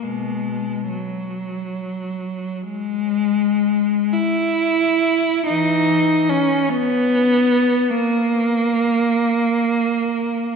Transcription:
0.03 B2 G#3
0.89 F#3
2.63 G#3
4.13 E4
5.46 E3 D#4
6.29 C#4
6.69 B3
7.89 A#3

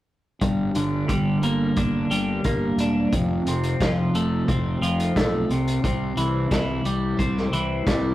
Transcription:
0.41 G1 G2, kick, closed hi-hat
0.75 G1 D3, closed hi-hat
1.08 G1 G3, kick, closed hi-hat
1.41 G1 A#3, closed hi-hat
1.76 G1 D4, kick, closed hi-hat
2.09 G1 G3, closed hi-hat
2.44 G1 A#3, kick, closed hi-hat
2.76 E1, closed hi-hat
2.80 D4
3.12 F1 F2, kick, closed hi-hat
3.45 F1 C3, closed hi-hat
3.63 closed hi-hat
3.80 F1 F3, kick, snare, closed hi-hat
4.13 F1 A3, closed hi-hat
4.48 F1 C4, kick, closed hi-hat
4.81 F1 F3, closed hi-hat
5.00 closed hi-hat
5.16 B1 A3, kick, snare, closed hi-hat
5.49 C2 C3, closed hi-hat
5.68 closed hi-hat
5.84 C2 C3, kick, closed hi-hat
6.17 C2 E3, closed hi-hat
6.51 C2 E3, kick, snare, closed hi-hat
6.85 C2 G3, closed hi-hat
7.19 C2 C4, kick, closed hi-hat
7.37 snare
7.52 C2 E3, closed hi-hat
7.86 C2 G3, kick, snare, closed hi-hat

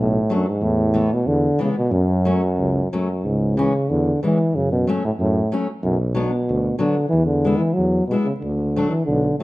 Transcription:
Already playing: B1
0.00 A2
0.30 F#2 F#3 A3 D4
0.48 G#2
0.61 E2 A2
0.94 E3 A3 B3
1.13 B2
1.26 E2 D3
1.59 E3 G#3 B3
1.63 C#3
1.78 B2
1.91 F#2
2.25 F#3 A3 C#4
2.58 C#2
2.92 F#2 F#3 A3 C#4
3.24 C#2 G#2
3.57 C#3 E3 G#3 C#4
3.89 E2 D3
4.23 E3 G#3 C#4
4.55 F#2 C#3
4.72 B2
4.87 F#3 A3 C#4
5.05 A2
5.19 F#2 A2
5.52 F#3 A3 C#4
5.83 B1 F#2
6.15 B2 F#3 B3 D4
6.49 D2
6.79 D3 F#3 B3 D4
7.09 E2 E3
7.26 D3
7.45 G#3 B3 E4
7.58 E3
7.74 F#3
7.78 E2
8.08 B2 G#3 B3
8.13 E4
8.24 C#3
8.40 D2 D3
8.76 F#3 A3 D4
8.90 E3
9.05 B1 D3
9.39 A2

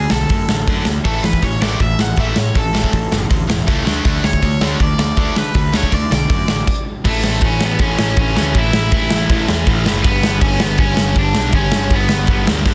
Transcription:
Already playing: G#4
0.10 B1 D3 A3 A4, snare
0.29 F#2 D3 A3, kick, open hi-hat
0.49 A1 D3 A3, snare
0.67 F#2 D3 A3 D4, kick, open hi-hat
0.85 D2 D3 A3, snare
1.04 A1 A2 E3 A3 A4, kick, crash
1.23 A1 A2 E3 B4, snare
1.33 kick
1.42 A1 A2 E3 C#5, kick, open hi-hat
1.62 A1 A2 E3 A3 D5, snare
1.80 A1 A2 E3 E5, kick, open hi-hat
1.99 A1 A2 E3 F#5, snare
2.16 A1 A2 E3 A3 E5, kick, open hi-hat
2.36 A2 E3 C#5, snare
2.55 A1 A2 E3 A4, kick, open hi-hat
2.73 A1 A2 E3 A3, snare
2.84 kick
2.92 A1 A2 E3, kick, open hi-hat
3.11 F#1 A2 E3, snare
3.30 D2 A2 E3, kick, open hi-hat
3.49 E1 A2 E3, snare
3.67 C#2 A2 E3 A3, kick, open hi-hat
3.86 D2 D3 A3 D4, snare
4.05 D2 D3 A3 D4, kick, open hi-hat
4.24 D2 D3 A3 C#5, snare
4.33 kick
4.42 D2 D3 A3, kick, open hi-hat
4.61 D2 D3 A3 D4, snare
4.80 D2 D3 A3 D5, kick, open hi-hat
4.98 D2 D3 A3 D5, snare
5.17 D2 D3 A3 D4, kick, open hi-hat
5.36 D3 A3 B4, snare
5.54 D2 D3 A3, kick, open hi-hat
5.73 D2 D3 A3 D4 C#5, snare
5.83 kick
5.91 D2 D3 A3 D5, kick, open hi-hat
6.10 B1 D3 A3 D5, snare
6.28 F#2 D3 A3, kick, open hi-hat
6.48 A1 D3 A3, snare
6.67 kick, crash
7.04 A1 A2 E3 A3, kick, crash
7.23 A2 E3 A3, snare
7.41 A1 A2 E3 A3, kick, crash
7.45 C#4
7.60 A2 E3 A3 B3, snare
7.79 A1 A2 E3 A3 C#4, kick, crash
7.98 A1 A2 E3 A3, snare
8.16 A1 A2 E3 A3 C#4, kick, crash
8.35 D2 A2 E3 A3, snare
8.54 A1 A2 E3 A3 E4, kick, crash
8.72 A1 A2 E3 A3, snare
8.92 A1 A2 E3 A3 E4, kick, crash
9.10 A2 E3 A3, snare
9.29 A1 A2 E3 A3, kick, crash
9.48 E2 A2 E3 A3, snare
9.67 A1 A2 E3 A3, kick, crash
9.85 F#1 A2 E3 A3, snare
10.03 G1 G2 D3 G3 B3, kick, crash
10.23 G2 D3 G3, snare
10.41 G1 G2 D3 G3 C#4, kick, crash
10.60 G2 D3 G3 B3, snare
10.78 G1 G2 D3 G3 C#4, kick, crash
10.97 G1 G2 D3 G3, snare
11.16 G1 G2 D3 G3 D4, kick, crash
11.34 B1 G2 D3 G3, snare
11.52 G1 G2 D3 G3 C#4, kick, crash
11.72 G1 G2 D3 G3, snare
11.90 G1 G2 D3 G3 B3, kick, crash
12.09 G2 D3 G3, snare
12.27 G1 G2 D3 G3, kick, crash
12.47 D2 G2 D3 G3, snare
12.65 G1 G2 D3 G3, kick, snare

